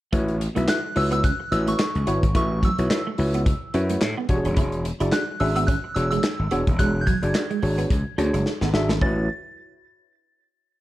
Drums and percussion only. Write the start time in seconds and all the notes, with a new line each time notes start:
0.13 kick, closed hi-hat
0.28 closed hi-hat
0.41 closed hi-hat
0.56 closed hi-hat
0.68 snare, clap, closed hi-hat
0.96 open hi-hat
1.12 closed hi-hat
1.24 kick, closed hi-hat
1.52 closed hi-hat
1.67 closed hi-hat
1.79 snare, clap, closed hi-hat
1.95 closed hi-hat
2.07 closed hi-hat
2.23 kick, closed hi-hat
2.35 kick, closed hi-hat
2.63 kick, closed hi-hat
2.78 closed hi-hat
2.91 snare, clap, closed hi-hat
3.18 open hi-hat
3.34 closed hi-hat
3.46 kick, closed hi-hat
3.74 closed hi-hat
3.90 closed hi-hat
4.01 snare, clap, closed hi-hat
4.29 kick, closed hi-hat
4.45 closed hi-hat
4.57 kick, closed hi-hat
4.72 closed hi-hat
4.85 closed hi-hat
5.00 closed hi-hat
5.12 snare, clap, closed hi-hat
5.40 open hi-hat
5.56 closed hi-hat
5.68 kick, closed hi-hat
5.96 closed hi-hat
6.12 closed hi-hat
6.23 snare, clap, closed hi-hat
6.51 closed hi-hat
6.67 kick, closed hi-hat
6.79 kick, closed hi-hat
7.07 kick, closed hi-hat
7.23 closed hi-hat
7.35 snare, clap, closed hi-hat
7.51 closed hi-hat
7.62 open hi-hat
7.78 closed hi-hat
7.90 kick, closed hi-hat
8.18 closed hi-hat
8.34 closed hi-hat
8.46 snare
8.61 snare
8.74 snare
8.89 snare
9.01 kick